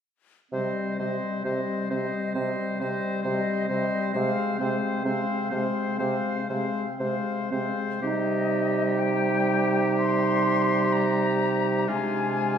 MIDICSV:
0, 0, Header, 1, 6, 480
1, 0, Start_track
1, 0, Key_signature, -3, "minor"
1, 0, Tempo, 936037
1, 270, Time_signature, 4, 2, 24, 8
1, 745, Tempo, 900901
1, 2665, Tempo, 946372
1, 3145, Tempo, 1013514
1, 4105, Tempo, 974026
1, 5065, Tempo, 947867
1, 6383, End_track
2, 0, Start_track
2, 0, Title_t, "Flute"
2, 0, Program_c, 0, 73
2, 268, Note_on_c, 0, 75, 37
2, 503, Note_off_c, 0, 75, 0
2, 506, Note_on_c, 0, 75, 33
2, 739, Note_off_c, 0, 75, 0
2, 746, Note_on_c, 0, 75, 36
2, 979, Note_off_c, 0, 75, 0
2, 983, Note_on_c, 0, 75, 39
2, 1221, Note_off_c, 0, 75, 0
2, 1225, Note_on_c, 0, 75, 38
2, 1461, Note_off_c, 0, 75, 0
2, 1464, Note_on_c, 0, 75, 40
2, 1698, Note_off_c, 0, 75, 0
2, 1701, Note_on_c, 0, 75, 40
2, 1937, Note_off_c, 0, 75, 0
2, 1945, Note_on_c, 0, 75, 50
2, 2177, Note_off_c, 0, 75, 0
2, 2180, Note_on_c, 0, 77, 50
2, 2416, Note_off_c, 0, 77, 0
2, 2419, Note_on_c, 0, 77, 39
2, 2658, Note_off_c, 0, 77, 0
2, 2664, Note_on_c, 0, 77, 39
2, 2893, Note_off_c, 0, 77, 0
2, 2896, Note_on_c, 0, 77, 44
2, 3138, Note_off_c, 0, 77, 0
2, 3143, Note_on_c, 0, 77, 41
2, 3374, Note_off_c, 0, 77, 0
2, 3377, Note_on_c, 0, 77, 41
2, 3614, Note_off_c, 0, 77, 0
2, 3620, Note_on_c, 0, 77, 40
2, 3861, Note_off_c, 0, 77, 0
2, 3863, Note_on_c, 0, 77, 41
2, 3994, Note_off_c, 0, 77, 0
2, 4101, Note_on_c, 0, 75, 53
2, 4576, Note_on_c, 0, 79, 63
2, 4583, Note_off_c, 0, 75, 0
2, 5061, Note_off_c, 0, 79, 0
2, 5064, Note_on_c, 0, 84, 65
2, 5545, Note_on_c, 0, 82, 64
2, 5553, Note_off_c, 0, 84, 0
2, 6027, Note_off_c, 0, 82, 0
2, 6032, Note_on_c, 0, 80, 59
2, 6383, Note_off_c, 0, 80, 0
2, 6383, End_track
3, 0, Start_track
3, 0, Title_t, "Oboe"
3, 0, Program_c, 1, 68
3, 275, Note_on_c, 1, 72, 34
3, 507, Note_off_c, 1, 72, 0
3, 510, Note_on_c, 1, 72, 38
3, 739, Note_off_c, 1, 72, 0
3, 742, Note_on_c, 1, 72, 36
3, 981, Note_off_c, 1, 72, 0
3, 985, Note_on_c, 1, 72, 35
3, 1217, Note_off_c, 1, 72, 0
3, 1220, Note_on_c, 1, 72, 32
3, 1458, Note_off_c, 1, 72, 0
3, 1463, Note_on_c, 1, 72, 42
3, 1689, Note_off_c, 1, 72, 0
3, 1692, Note_on_c, 1, 72, 45
3, 1928, Note_off_c, 1, 72, 0
3, 1931, Note_on_c, 1, 72, 43
3, 2171, Note_off_c, 1, 72, 0
3, 2174, Note_on_c, 1, 72, 49
3, 2414, Note_off_c, 1, 72, 0
3, 2418, Note_on_c, 1, 72, 48
3, 2656, Note_off_c, 1, 72, 0
3, 2659, Note_on_c, 1, 72, 45
3, 2889, Note_off_c, 1, 72, 0
3, 2892, Note_on_c, 1, 72, 46
3, 3136, Note_off_c, 1, 72, 0
3, 3141, Note_on_c, 1, 72, 42
3, 3376, Note_off_c, 1, 72, 0
3, 3378, Note_on_c, 1, 72, 39
3, 3544, Note_off_c, 1, 72, 0
3, 3614, Note_on_c, 1, 72, 40
3, 3858, Note_off_c, 1, 72, 0
3, 3864, Note_on_c, 1, 72, 39
3, 4099, Note_off_c, 1, 72, 0
3, 4103, Note_on_c, 1, 67, 48
3, 6029, Note_on_c, 1, 65, 47
3, 6036, Note_off_c, 1, 67, 0
3, 6383, Note_off_c, 1, 65, 0
3, 6383, End_track
4, 0, Start_track
4, 0, Title_t, "Clarinet"
4, 0, Program_c, 2, 71
4, 263, Note_on_c, 2, 60, 33
4, 502, Note_off_c, 2, 60, 0
4, 509, Note_on_c, 2, 60, 34
4, 740, Note_off_c, 2, 60, 0
4, 746, Note_on_c, 2, 60, 33
4, 983, Note_off_c, 2, 60, 0
4, 986, Note_on_c, 2, 60, 36
4, 1218, Note_off_c, 2, 60, 0
4, 1221, Note_on_c, 2, 60, 47
4, 1459, Note_off_c, 2, 60, 0
4, 1463, Note_on_c, 2, 60, 39
4, 1698, Note_off_c, 2, 60, 0
4, 1701, Note_on_c, 2, 60, 41
4, 1934, Note_off_c, 2, 60, 0
4, 1937, Note_on_c, 2, 60, 43
4, 2175, Note_off_c, 2, 60, 0
4, 2184, Note_on_c, 2, 60, 50
4, 2417, Note_off_c, 2, 60, 0
4, 2420, Note_on_c, 2, 60, 42
4, 2658, Note_off_c, 2, 60, 0
4, 2661, Note_on_c, 2, 60, 46
4, 2893, Note_off_c, 2, 60, 0
4, 2900, Note_on_c, 2, 60, 38
4, 3134, Note_off_c, 2, 60, 0
4, 3137, Note_on_c, 2, 60, 53
4, 3308, Note_off_c, 2, 60, 0
4, 3379, Note_on_c, 2, 60, 39
4, 3615, Note_off_c, 2, 60, 0
4, 3619, Note_on_c, 2, 60, 39
4, 3857, Note_off_c, 2, 60, 0
4, 3860, Note_on_c, 2, 60, 38
4, 4097, Note_off_c, 2, 60, 0
4, 4104, Note_on_c, 2, 63, 44
4, 6010, Note_off_c, 2, 63, 0
4, 6026, Note_on_c, 2, 62, 46
4, 6383, Note_off_c, 2, 62, 0
4, 6383, End_track
5, 0, Start_track
5, 0, Title_t, "French horn"
5, 0, Program_c, 3, 60
5, 277, Note_on_c, 3, 55, 38
5, 509, Note_off_c, 3, 55, 0
5, 517, Note_on_c, 3, 55, 35
5, 744, Note_off_c, 3, 55, 0
5, 748, Note_on_c, 3, 55, 33
5, 984, Note_off_c, 3, 55, 0
5, 996, Note_on_c, 3, 55, 35
5, 1228, Note_off_c, 3, 55, 0
5, 1237, Note_on_c, 3, 55, 38
5, 1467, Note_off_c, 3, 55, 0
5, 1477, Note_on_c, 3, 55, 37
5, 1705, Note_off_c, 3, 55, 0
5, 1712, Note_on_c, 3, 55, 43
5, 1940, Note_off_c, 3, 55, 0
5, 1943, Note_on_c, 3, 55, 39
5, 2178, Note_off_c, 3, 55, 0
5, 2184, Note_on_c, 3, 56, 47
5, 2419, Note_off_c, 3, 56, 0
5, 2426, Note_on_c, 3, 56, 47
5, 2661, Note_off_c, 3, 56, 0
5, 2667, Note_on_c, 3, 56, 41
5, 2896, Note_off_c, 3, 56, 0
5, 2904, Note_on_c, 3, 56, 44
5, 3142, Note_off_c, 3, 56, 0
5, 3151, Note_on_c, 3, 56, 37
5, 3381, Note_off_c, 3, 56, 0
5, 3385, Note_on_c, 3, 56, 41
5, 3555, Note_off_c, 3, 56, 0
5, 3625, Note_on_c, 3, 56, 38
5, 3863, Note_off_c, 3, 56, 0
5, 3868, Note_on_c, 3, 56, 34
5, 4101, Note_off_c, 3, 56, 0
5, 4107, Note_on_c, 3, 55, 40
5, 6032, Note_on_c, 3, 56, 42
5, 6040, Note_off_c, 3, 55, 0
5, 6383, Note_off_c, 3, 56, 0
5, 6383, End_track
6, 0, Start_track
6, 0, Title_t, "Bassoon"
6, 0, Program_c, 4, 70
6, 267, Note_on_c, 4, 48, 45
6, 349, Note_off_c, 4, 48, 0
6, 511, Note_on_c, 4, 48, 40
6, 593, Note_off_c, 4, 48, 0
6, 743, Note_on_c, 4, 48, 40
6, 828, Note_off_c, 4, 48, 0
6, 987, Note_on_c, 4, 48, 37
6, 1073, Note_off_c, 4, 48, 0
6, 1225, Note_on_c, 4, 48, 42
6, 1310, Note_off_c, 4, 48, 0
6, 1467, Note_on_c, 4, 48, 42
6, 1552, Note_off_c, 4, 48, 0
6, 1702, Note_on_c, 4, 48, 50
6, 1787, Note_off_c, 4, 48, 0
6, 1946, Note_on_c, 4, 48, 43
6, 2031, Note_off_c, 4, 48, 0
6, 2184, Note_on_c, 4, 48, 55
6, 2270, Note_off_c, 4, 48, 0
6, 2423, Note_on_c, 4, 48, 49
6, 2508, Note_off_c, 4, 48, 0
6, 2664, Note_on_c, 4, 48, 45
6, 2746, Note_off_c, 4, 48, 0
6, 2900, Note_on_c, 4, 48, 44
6, 2981, Note_off_c, 4, 48, 0
6, 3144, Note_on_c, 4, 48, 51
6, 3220, Note_off_c, 4, 48, 0
6, 3381, Note_on_c, 4, 48, 48
6, 3456, Note_off_c, 4, 48, 0
6, 3618, Note_on_c, 4, 48, 43
6, 3694, Note_off_c, 4, 48, 0
6, 3863, Note_on_c, 4, 48, 38
6, 3939, Note_off_c, 4, 48, 0
6, 4102, Note_on_c, 4, 48, 51
6, 6008, Note_off_c, 4, 48, 0
6, 6029, Note_on_c, 4, 48, 56
6, 6383, Note_off_c, 4, 48, 0
6, 6383, End_track
0, 0, End_of_file